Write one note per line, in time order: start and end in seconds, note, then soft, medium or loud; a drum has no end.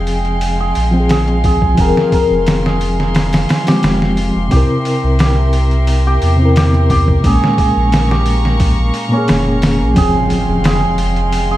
0.00 0.73 F1 medium
0.00 0.88 F3 medium
0.00 4.47 G#3 medium
0.00 0.90 C4 medium
0.00 0.60 G#4 medium
0.00 0.92 G#4 medium
0.00 4.47 F5 medium
0.00 0.91 G5 medium
0.00 1.76 G5 medium
0.00 7.20 C6 medium
0.07 open hi-hat medium
0.25 closed hi-hat soft
0.41 open hi-hat medium
0.60 1.11 G#4 medium
0.75 1.76 A#1 medium
0.75 open hi-hat medium
0.91 1.73 F3 medium
0.91 1.74 C4 medium
0.97 1.78 G#4 medium
0.97 1.76 G5 medium
1.09 1.45 G#4 medium
1.09 snare loud
1.09 open hi-hat medium
1.28 closed hi-hat soft
1.44 2.65 G#4 medium
1.44 kick loud
1.44 open hi-hat medium
1.62 kick medium
1.75 1.94 F1 medium
1.75 3.61 F3 medium
1.75 3.62 C4 medium
1.75 kick loud
1.75 open hi-hat medium
1.80 3.65 G#4 medium
1.80 2.13 A#4 medium
1.80 3.64 G5 medium
1.97 snare soft
2.12 4.96 A#4 medium
2.12 kick medium
2.12 open hi-hat medium
2.31 3.46 F1 medium
2.46 snare loud
2.46 open hi-hat medium
2.66 3.74 G#4 medium
2.66 snare medium
2.81 open hi-hat medium
3.00 snare soft
3.15 snare loud
3.15 open hi-hat medium
3.33 snare loud
3.33 open hi-hat medium
3.49 snare loud
3.49 open hi-hat medium
3.63 4.46 F3 medium
3.63 4.47 C4 medium
3.63 open hi-hat medium
3.68 4.51 G4 medium
3.68 4.49 G4 medium
3.68 snare loud
3.72 4.50 G#3 medium
3.83 4.32 F1 medium
3.83 snare loud
3.83 open hi-hat medium
4.02 snare medium
4.17 open hi-hat medium
4.36 4.50 F1 medium
4.48 4.67 C2 medium
4.48 6.34 C3 medium
4.48 6.35 C4 medium
4.48 kick loud
4.48 open hi-hat medium
4.52 6.37 E4 medium
4.52 5.20 G4 medium
4.52 9.93 A#4 medium
4.52 7.22 E5 medium
4.52 7.22 G5 medium
4.56 6.38 A#4 loud
4.85 open hi-hat medium
5.04 6.19 C2 loud
5.19 6.07 G4 medium
5.19 snare loud
5.19 open hi-hat medium
5.53 open hi-hat medium
5.71 closed hi-hat soft
5.87 open hi-hat medium
6.07 6.57 G4 medium
6.22 7.21 E2 medium
6.22 open hi-hat medium
6.36 7.19 C3 medium
6.36 7.20 C4 medium
6.42 7.21 E4 medium
6.42 7.23 A#4 loud
6.56 6.90 G4 medium
6.56 snare loud
6.56 open hi-hat medium
6.74 closed hi-hat soft
6.90 7.32 G4 medium
6.90 kick medium
6.90 open hi-hat medium
7.08 kick medium
7.20 7.40 A#1 medium
7.20 9.06 A#2 medium
7.20 9.08 A#3 medium
7.20 9.94 C#6 medium
7.20 kick loud
7.20 open hi-hat medium
7.24 9.09 C#4 medium
7.24 7.60 G#4 medium
7.24 9.94 F5 medium
7.24 9.94 A#5 medium
7.29 9.11 G#3 medium
7.44 snare soft
7.58 8.17 G#4 medium
7.58 kick medium
7.58 open hi-hat medium
7.77 8.92 A#1 medium
7.92 snare loud
7.92 open hi-hat medium
8.11 10.04 G4 medium
8.11 snare medium
8.26 open hi-hat medium
8.45 snare soft
8.60 kick loud
8.60 open hi-hat medium
8.94 open hi-hat medium
9.09 9.91 A#2 medium
9.09 9.93 A#3 medium
9.13 11.57 C#4 medium
9.13 9.94 C#4 medium
9.18 9.96 G#4 loud
9.28 9.83 F1 medium
9.28 snare loud
9.28 open hi-hat medium
9.62 snare loud
9.62 open hi-hat medium
9.81 9.95 A#1 loud
9.93 10.13 F1 medium
9.93 11.57 F3 medium
9.93 11.57 G#3 medium
9.93 11.57 C4 medium
9.93 11.57 F5 medium
9.93 11.57 G5 medium
9.93 11.57 C6 medium
9.93 kick loud
9.93 open hi-hat medium
9.93 impact medium
9.98 10.65 G#4 loud
9.98 11.57 G5 medium
10.02 11.57 G#4 medium
10.30 open hi-hat medium
10.49 11.57 F1 medium
10.64 11.51 G#4 medium
10.64 snare loud
10.64 open hi-hat medium
10.98 open hi-hat medium
11.16 closed hi-hat soft
11.32 open hi-hat medium
11.51 11.57 G#4 medium